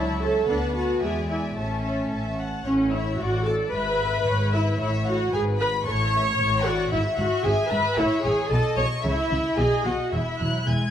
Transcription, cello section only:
Already playing: F#3
0.49 B3
1.02 G#3
1.56 A3
2.65 A2
3.19 A2
3.73 G#2
4.27 G#2
4.80 A2
5.33 G#2
5.87 A2
6.40 A2
6.92 G#2
7.18 G#2
7.45 G#2
7.71 G#2
7.98 A2
8.25 A2
8.51 B2
8.77 B2
9.04 C#3
9.30 C#3
9.57 B2
9.85 B2
10.12 E2
10.40 E2 F#3
10.67 E2 G#3

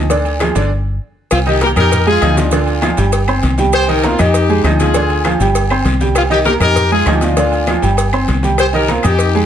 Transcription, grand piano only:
0.10 D3 D4 D5
0.40 F3 F4 G#4
0.56 D3 D4 D5
1.46 D#3 D#4 D#5
1.62 A#3 A#4 A#5
1.76 D#4 D#5 D#6
2.07 G#3 G#4 G#5
2.22 F3 D#4 D#5
2.53 D3 D4 D5
2.83 F3 F4 F5
2.98 G3 G4 G5
3.28 C4 C5 C6
3.59 G3 G4 G5
3.88 D#3 D#4 D#5
4.04 A#3 A#4 A#5
4.19 D#4 D#5 D#6
4.49 G#3 G#4 G#5
4.65 F3 D#4 D#5
4.96 D3 D4 D5
5.26 F3 F4 F5
5.41 G3 G4 G5
5.71 C4 C5 C6
6.01 G3 G4 G5
6.30 D#3 D#4 D#5
6.46 A#3 A#4 A#5
6.62 D#4 D#5 D#6
6.91 G#3 G#4 G#5
7.07 F3 D#4 D#5
7.38 D3 D4 D5
7.68 F3 F4 F5
7.82 G3 G4 G5
8.13 C4 C5 C6
8.43 G3 G4 G5
8.73 D#3 D#4 D#5
8.89 A#3 A#4 A#5
9.04 D#4 D#5 D#6
9.35 G#3 G#4 G#5

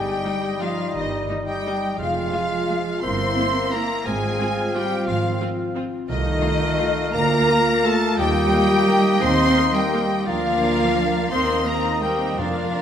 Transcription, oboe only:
Already playing: D#5
1.99 F5
3.02 E5
4.06 F5
6.09 F5
8.19 D#5
10.26 D5
11.32 D#5
12.39 D5
12.75 D5

